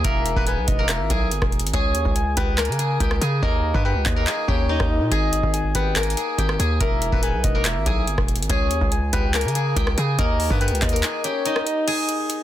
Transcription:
Already playing: D#4 G#4 G#5
0.04 E1 A#3 A#4 E5, kick, closed hi-hat
0.26 closed hi-hat
0.36 D#1 B3 B4, kick
0.47 B3 B4 G#5, closed hi-hat
0.57 B1
0.68 E1 D#5, kick, closed hi-hat
0.79 A#3 A#4
0.89 E5, cross-stick, clap, closed hi-hat
0.99 G#1
1.10 B1 G#4 G#5, kick, closed hi-hat
1.31 G1, closed hi-hat
1.42 E1, kick, cross-stick
1.52 closed hi-hat
1.59 G#1, closed hi-hat
1.67 closed hi-hat
1.73 C#2 G#4 C#5 G#5, kick, closed hi-hat
1.95 D#2, closed hi-hat
2.05 C#2, kick
2.16 G#5, closed hi-hat
2.37 C#2 B3 B4 G5, kick, closed hi-hat
2.58 A#3 A#4 G#5, cross-stick, clap, closed hi-hat
2.65 C#3, closed hi-hat
2.72 closed hi-hat
2.79 G#4 G#5, closed hi-hat
3.00 C#2 G4 G5, kick, closed hi-hat
3.11 cross-stick
3.21 C#3 G#4 G#5, closed hi-hat
3.42 D#2 A#3 A#4 D#5, kick
3.74 G2 B3 B4, kick
3.85 B3 B4 G5
3.95 C#2
4.06 D#2 D#5, kick, clap
4.16 A#3 A#4
4.27 G#4 G#5, clap
4.48 D#2 G4 C#5 G5, kick
4.69 D#4 D#5
4.80 D#2, kick, cross-stick
4.90 D#5
5.01 A#2
5.11 G#1 G#4 D#5 G#5, kick, closed hi-hat
5.33 closed hi-hat
5.43 G#1, kick
5.54 G#5, closed hi-hat
5.75 G#1 B3 B4 G5, kick, closed hi-hat
5.96 A#3 A#4 G#5, cross-stick, clap, closed hi-hat
6.03 closed hi-hat
6.10 closed hi-hat
6.17 G#4 G#5, closed hi-hat
6.38 G#1 G4 G5, kick, closed hi-hat
6.49 cross-stick
6.59 D#2 G#4 G#5, closed hi-hat
6.80 E1 A#3 A#4 E5, kick, closed hi-hat
7.02 closed hi-hat
7.12 D#1 B3 B4, kick
7.23 B3 B4 G#5, closed hi-hat
7.33 B1
7.44 E1 D#5, kick, closed hi-hat
7.55 A#3 A#4
7.65 E5, cross-stick, clap, closed hi-hat
7.76 G#1
7.86 B1 G#4 G#5, kick, closed hi-hat
8.07 G1, closed hi-hat
8.18 E1, kick, cross-stick
8.28 closed hi-hat
8.36 G#1, closed hi-hat
8.43 closed hi-hat
8.50 C#2 G#4 C#5 G#5, kick, closed hi-hat
8.71 D#2, closed hi-hat
8.81 C#2, kick
8.92 G#5, closed hi-hat
9.13 C#2 B3 B4 G5, kick, closed hi-hat
9.34 A#3 A#4 G#5, cross-stick, clap, closed hi-hat
9.41 C#3, closed hi-hat
9.48 closed hi-hat
9.55 G#4 G#5, closed hi-hat
9.76 C#2 G4 G5, kick, closed hi-hat
9.87 cross-stick
9.97 C#3 G#4 G#5, closed hi-hat
10.19 D#2 A#3 A#4 D#5, kick, closed hi-hat
10.40 open hi-hat
10.50 G2 B3 B4, kick
10.61 B3 B4 G5, closed hi-hat
10.68 C#2, closed hi-hat
10.75 closed hi-hat
10.82 D#2 D#5, kick, clap, closed hi-hat
10.89 A#4, closed hi-hat
10.93 A#3, closed hi-hat
11.03 G#4 G#5, clap, closed hi-hat
11.24 G4 C#5 G5, closed hi-hat
11.46 D#4 D#5, closed hi-hat
11.56 cross-stick
11.66 D#5, closed hi-hat
11.87 G#4 G#5, closed hi-hat, crash
12.09 closed hi-hat
12.30 closed hi-hat

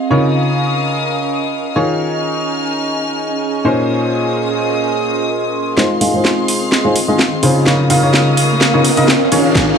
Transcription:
Already playing: C4 G#4 D#5 F5
0.11 C#3 C#4 D#4 F4 A#4 C#5 F5 D#6
0.31 A#4
1.76 D#3 C#4 D#4 F4 G#4 C#5 G#5 F6
1.96 G#4
3.65 A#2 A#3 C#4 D#4 F4 G#4 A#4 C5 D#6
4.12 A#4
4.32 C6
5.77 G#3 C4 D#4 F4 G#4 C5 F5 C6, snare, riser
6.01 G#3 D#4 F4 G#4 F5, open hi-hat
6.14 G#3 D#4 F4 G#4 C5
6.25 snare
6.48 open hi-hat
6.57 F5
6.72 snare
6.85 G#3 D#4 F4 G#4 C5
6.96 open hi-hat
7.08 G#3 D#4 F4 G#4 D#5
7.19 snare
7.43 C#3 D#4 F4 G#4 C5, open hi-hat
7.66 C#3 C#4 D#4 F4 A#4 C#5 F5 D#6, snare
7.90 C#3 D#4 F4 A#4 F5, open hi-hat
7.97 A#4
8.03 C#3 D#4 F4 A#4 C#5
8.14 snare
8.37 open hi-hat
8.61 snare
8.74 C#3 D#4 F4 A#4 C#5
8.85 open hi-hat
8.97 C#3 D#4 F4 A#4 D#5, open hi-hat
9.08 snare
9.32 D#3 D#4 F4 G#4 C#5 G#5 F6, open hi-hat
9.55 D#3 D#4 F4 G#4 C#5, kick, snare

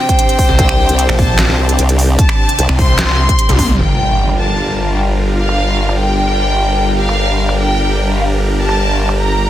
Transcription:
Already playing: C3 C4 D4 G4 C5 G5
0.09 kick, closed hi-hat
0.19 closed hi-hat
0.29 closed hi-hat
0.39 kick, open hi-hat
0.49 C2
0.59 C2 G5, kick, closed hi-hat
0.69 finger snap
0.89 C2, closed hi-hat
0.99 closed hi-hat
1.09 A#1, finger snap
1.19 A5, kick, open hi-hat
1.39 snare, clap, closed hi-hat
1.49 C2
1.69 C4 G4 C5, closed hi-hat
1.79 C2 G5, closed hi-hat
1.89 closed hi-hat
1.99 open hi-hat
2.19 A5, kick, closed hi-hat
2.29 finger snap
2.49 closed hi-hat
2.59 C2, closed hi-hat
2.69 C2, finger snap
2.79 C4 G4 C5 C6, kick, open hi-hat
2.99 snare, clap, closed hi-hat
3.29 kick, closed hi-hat
3.39 closed hi-hat
3.49 C2, closed hi-hat, high tom
3.59 kick, open hi-hat, mid tom
3.69 mid tom
3.79 G1 G3 D4 F4 A#4 G5, impact
3.89 finger snap
4.29 finger snap
4.39 A5
4.99 G5
5.39 F5
5.49 finger snap
5.89 finger snap
5.99 G5
6.99 G4 F5
7.09 finger snap
7.49 finger snap
7.59 G5
8.19 F5
8.59 A5
8.69 finger snap
9.09 finger snap
9.19 A#5

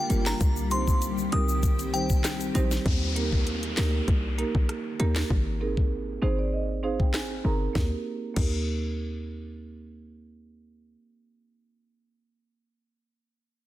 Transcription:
Already playing: D3 G3 A#3 F4
0.10 G1 A#3 D4 F4 G4 A#4, closed hi-hat, shaker
0.26 A#5, snare, clap, shaker
0.41 C2 D#3 C4 G4, kick, closed hi-hat, shaker
0.56 shaker
0.71 G3 C4 D#4 G4 C5 C6, closed hi-hat, shaker
0.88 kick, shaker
1.02 closed hi-hat, shaker
1.18 shaker
1.32 C2 G3 C4 D#4 G4 A#4 D#6, closed hi-hat
1.49 shaker
1.63 kick, closed hi-hat, shaker
1.79 closed hi-hat, shaker
1.93 G3 C4 D#4 G4 C5 G5, closed hi-hat, shaker
2.10 kick, shaker
2.24 cross-stick, snare, clap, closed hi-hat, shaker
2.40 closed hi-hat, shaker
2.54 A#1 G3 C4 D#4 G4 C5, closed hi-hat, shaker
2.71 snare, shaker
2.86 D#2, kick, closed hi-hat, downlifter
3.16 A#3 D#4 G4 A#4, closed hi-hat
3.33 kick
3.47 closed hi-hat
3.63 closed hi-hat
3.77 D2 A#3 D#4 G4 A#4, snare, clap, closed hi-hat
4.08 C2, kick, closed hi-hat
4.38 A#3 D#4 G4 A#4, closed hi-hat
4.55 A#1, kick
4.69 cross-stick, closed hi-hat
4.99 D#2 A#3 D#4 G4 A#4, closed hi-hat
5.16 snare, clap
5.30 G#1, kick
5.60 C4 D#4 G#4 A#4
5.77 kick
6.22 G#1 C4 D#4 G#4 C5
6.39 D5
6.53 D#5
6.83 C4 D#4 G#4 C5 F5
7.00 G5, kick
7.14 G#5, cross-stick, snare, clap
7.44 G1 C4 D#4 G#4 A#4 A#5
7.73 D#2 A#3 D#4 G4, kick, snare
7.78 A#4
8.34 D#2 A#3 D#4 G4, kick, crash
8.39 A#4

